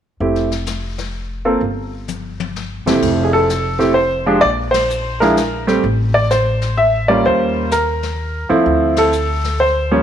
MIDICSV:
0, 0, Header, 1, 4, 480
1, 0, Start_track
1, 0, Key_signature, -1, "major"
1, 0, Tempo, 469851
1, 207, Time_signature, 3, 2, 24, 8
1, 10243, End_track
2, 0, Start_track
2, 0, Title_t, "Grand piano"
2, 0, Program_c, 0, 0
2, 209, Note_on_c, 0, 57, 39
2, 211, Note_on_c, 0, 64, 38
2, 212, Note_on_c, 0, 60, 36
2, 216, Note_on_c, 0, 67, 47
2, 492, Note_off_c, 0, 57, 0
2, 493, Note_off_c, 0, 64, 0
2, 494, Note_off_c, 0, 60, 0
2, 495, Note_off_c, 0, 67, 0
2, 1482, Note_on_c, 0, 58, 54
2, 1483, Note_on_c, 0, 65, 50
2, 1485, Note_on_c, 0, 60, 49
2, 1485, Note_on_c, 0, 69, 54
2, 1631, Note_off_c, 0, 58, 0
2, 1631, Note_off_c, 0, 65, 0
2, 1633, Note_off_c, 0, 60, 0
2, 1633, Note_off_c, 0, 69, 0
2, 2926, Note_on_c, 0, 41, 53
2, 2926, Note_on_c, 0, 57, 47
2, 2929, Note_on_c, 0, 60, 45
2, 2932, Note_on_c, 0, 64, 47
2, 2933, Note_on_c, 0, 67, 57
2, 3305, Note_on_c, 0, 68, 47
2, 3401, Note_off_c, 0, 68, 0
2, 3404, Note_on_c, 0, 69, 78
2, 3537, Note_off_c, 0, 41, 0
2, 3537, Note_off_c, 0, 57, 0
2, 3539, Note_off_c, 0, 60, 0
2, 3540, Note_off_c, 0, 64, 0
2, 3540, Note_off_c, 0, 67, 0
2, 3869, Note_on_c, 0, 57, 57
2, 3869, Note_on_c, 0, 60, 53
2, 3877, Note_on_c, 0, 64, 51
2, 3877, Note_on_c, 0, 67, 62
2, 4025, Note_off_c, 0, 57, 0
2, 4025, Note_off_c, 0, 60, 0
2, 4027, Note_on_c, 0, 72, 75
2, 4029, Note_off_c, 0, 64, 0
2, 4029, Note_off_c, 0, 67, 0
2, 4068, Note_off_c, 0, 69, 0
2, 4355, Note_on_c, 0, 56, 55
2, 4356, Note_on_c, 0, 53, 58
2, 4361, Note_on_c, 0, 62, 60
2, 4361, Note_on_c, 0, 67, 66
2, 4505, Note_on_c, 0, 74, 92
2, 4508, Note_off_c, 0, 53, 0
2, 4508, Note_off_c, 0, 56, 0
2, 4511, Note_off_c, 0, 62, 0
2, 4511, Note_off_c, 0, 67, 0
2, 4533, Note_off_c, 0, 72, 0
2, 4579, Note_off_c, 0, 74, 0
2, 4812, Note_on_c, 0, 72, 81
2, 5315, Note_on_c, 0, 70, 68
2, 5322, Note_off_c, 0, 72, 0
2, 5323, Note_on_c, 0, 53, 58
2, 5326, Note_on_c, 0, 56, 55
2, 5326, Note_on_c, 0, 64, 65
2, 5328, Note_on_c, 0, 62, 57
2, 5472, Note_off_c, 0, 53, 0
2, 5473, Note_off_c, 0, 56, 0
2, 5473, Note_off_c, 0, 64, 0
2, 5474, Note_off_c, 0, 62, 0
2, 5765, Note_off_c, 0, 70, 0
2, 5795, Note_on_c, 0, 55, 61
2, 5797, Note_on_c, 0, 57, 57
2, 5801, Note_on_c, 0, 60, 56
2, 5801, Note_on_c, 0, 67, 72
2, 5948, Note_off_c, 0, 55, 0
2, 5949, Note_off_c, 0, 57, 0
2, 5950, Note_off_c, 0, 60, 0
2, 5951, Note_off_c, 0, 67, 0
2, 6275, Note_on_c, 0, 74, 76
2, 6444, Note_on_c, 0, 72, 74
2, 6449, Note_off_c, 0, 74, 0
2, 6921, Note_on_c, 0, 76, 79
2, 6941, Note_off_c, 0, 72, 0
2, 7217, Note_off_c, 0, 76, 0
2, 7236, Note_on_c, 0, 74, 74
2, 7244, Note_on_c, 0, 55, 61
2, 7246, Note_on_c, 0, 58, 57
2, 7246, Note_on_c, 0, 61, 52
2, 7250, Note_on_c, 0, 65, 66
2, 7409, Note_off_c, 0, 74, 0
2, 7415, Note_on_c, 0, 72, 80
2, 7855, Note_off_c, 0, 55, 0
2, 7857, Note_off_c, 0, 58, 0
2, 7857, Note_off_c, 0, 61, 0
2, 7858, Note_off_c, 0, 65, 0
2, 7858, Note_off_c, 0, 72, 0
2, 7888, Note_on_c, 0, 70, 62
2, 8642, Note_off_c, 0, 70, 0
2, 8676, Note_on_c, 0, 53, 59
2, 8679, Note_on_c, 0, 60, 58
2, 8680, Note_on_c, 0, 57, 54
2, 8684, Note_on_c, 0, 64, 70
2, 9177, Note_on_c, 0, 69, 83
2, 9292, Note_off_c, 0, 53, 0
2, 9293, Note_off_c, 0, 57, 0
2, 9293, Note_off_c, 0, 60, 0
2, 9296, Note_off_c, 0, 64, 0
2, 9808, Note_on_c, 0, 72, 79
2, 9835, Note_off_c, 0, 69, 0
2, 10129, Note_on_c, 0, 53, 59
2, 10130, Note_on_c, 0, 55, 57
2, 10130, Note_on_c, 0, 58, 55
2, 10133, Note_on_c, 0, 61, 69
2, 10243, Note_off_c, 0, 53, 0
2, 10243, Note_off_c, 0, 55, 0
2, 10243, Note_off_c, 0, 58, 0
2, 10243, Note_off_c, 0, 61, 0
2, 10243, Note_off_c, 0, 72, 0
2, 10243, End_track
3, 0, Start_track
3, 0, Title_t, "Upright bass"
3, 0, Program_c, 1, 32
3, 208, Note_on_c, 1, 29, 64
3, 1608, Note_off_c, 1, 29, 0
3, 1644, Note_on_c, 1, 31, 64
3, 2881, Note_off_c, 1, 31, 0
3, 2920, Note_on_c, 1, 30, 55
3, 3075, Note_off_c, 1, 30, 0
3, 3089, Note_on_c, 1, 29, 67
3, 4488, Note_off_c, 1, 29, 0
3, 4526, Note_on_c, 1, 34, 66
3, 5926, Note_off_c, 1, 34, 0
3, 5962, Note_on_c, 1, 33, 73
3, 7364, Note_off_c, 1, 33, 0
3, 7408, Note_on_c, 1, 39, 68
3, 8642, Note_off_c, 1, 39, 0
3, 8682, Note_on_c, 1, 39, 56
3, 8836, Note_off_c, 1, 39, 0
3, 8846, Note_on_c, 1, 38, 69
3, 10243, Note_off_c, 1, 38, 0
3, 10243, End_track
4, 0, Start_track
4, 0, Title_t, "Drums"
4, 206, Note_on_c, 9, 25, 39
4, 365, Note_on_c, 9, 38, 24
4, 467, Note_off_c, 9, 38, 0
4, 526, Note_on_c, 9, 38, 30
4, 628, Note_off_c, 9, 38, 0
4, 678, Note_on_c, 9, 44, 47
4, 683, Note_on_c, 9, 38, 43
4, 781, Note_off_c, 9, 44, 0
4, 785, Note_off_c, 9, 38, 0
4, 1004, Note_on_c, 9, 38, 44
4, 1106, Note_off_c, 9, 38, 0
4, 1644, Note_off_c, 9, 25, 0
4, 1644, Note_on_c, 9, 25, 41
4, 2125, Note_on_c, 9, 44, 43
4, 2129, Note_on_c, 9, 48, 33
4, 2227, Note_off_c, 9, 44, 0
4, 2231, Note_off_c, 9, 48, 0
4, 2451, Note_on_c, 9, 48, 51
4, 2553, Note_off_c, 9, 48, 0
4, 2616, Note_on_c, 9, 38, 42
4, 2718, Note_off_c, 9, 38, 0
4, 2935, Note_on_c, 9, 38, 67
4, 3037, Note_off_c, 9, 38, 0
4, 3089, Note_on_c, 9, 51, 58
4, 3090, Note_on_c, 9, 36, 55
4, 3093, Note_off_c, 9, 25, 0
4, 3093, Note_on_c, 9, 25, 42
4, 3191, Note_off_c, 9, 51, 0
4, 3192, Note_off_c, 9, 36, 0
4, 3569, Note_on_c, 9, 44, 46
4, 3573, Note_on_c, 9, 38, 44
4, 3671, Note_off_c, 9, 44, 0
4, 3675, Note_off_c, 9, 38, 0
4, 3885, Note_on_c, 9, 38, 31
4, 3987, Note_off_c, 9, 38, 0
4, 4524, Note_off_c, 9, 25, 0
4, 4524, Note_on_c, 9, 25, 42
4, 4839, Note_on_c, 9, 51, 54
4, 4843, Note_on_c, 9, 38, 64
4, 4941, Note_off_c, 9, 51, 0
4, 4945, Note_off_c, 9, 38, 0
4, 5005, Note_on_c, 9, 44, 44
4, 5107, Note_off_c, 9, 44, 0
4, 5327, Note_on_c, 9, 38, 31
4, 5429, Note_off_c, 9, 38, 0
4, 5485, Note_on_c, 9, 44, 48
4, 5490, Note_on_c, 9, 38, 47
4, 5588, Note_off_c, 9, 44, 0
4, 5592, Note_off_c, 9, 38, 0
4, 5804, Note_on_c, 9, 38, 35
4, 5906, Note_off_c, 9, 38, 0
4, 5970, Note_off_c, 9, 25, 0
4, 5970, Note_on_c, 9, 25, 41
4, 6440, Note_on_c, 9, 44, 43
4, 6444, Note_on_c, 9, 38, 47
4, 6542, Note_off_c, 9, 44, 0
4, 6547, Note_off_c, 9, 38, 0
4, 6758, Note_on_c, 9, 38, 31
4, 6860, Note_off_c, 9, 38, 0
4, 7409, Note_off_c, 9, 25, 0
4, 7409, Note_on_c, 9, 25, 42
4, 7879, Note_on_c, 9, 44, 46
4, 7883, Note_on_c, 9, 38, 46
4, 7982, Note_off_c, 9, 44, 0
4, 7986, Note_off_c, 9, 38, 0
4, 8203, Note_on_c, 9, 38, 31
4, 8305, Note_off_c, 9, 38, 0
4, 8846, Note_off_c, 9, 25, 0
4, 8846, Note_on_c, 9, 25, 44
4, 9157, Note_on_c, 9, 51, 54
4, 9161, Note_on_c, 9, 38, 61
4, 9259, Note_off_c, 9, 51, 0
4, 9263, Note_off_c, 9, 38, 0
4, 9323, Note_on_c, 9, 44, 40
4, 9425, Note_off_c, 9, 44, 0
4, 9647, Note_on_c, 9, 38, 31
4, 9749, Note_off_c, 9, 38, 0
4, 10243, Note_off_c, 9, 25, 0
4, 10243, End_track
0, 0, End_of_file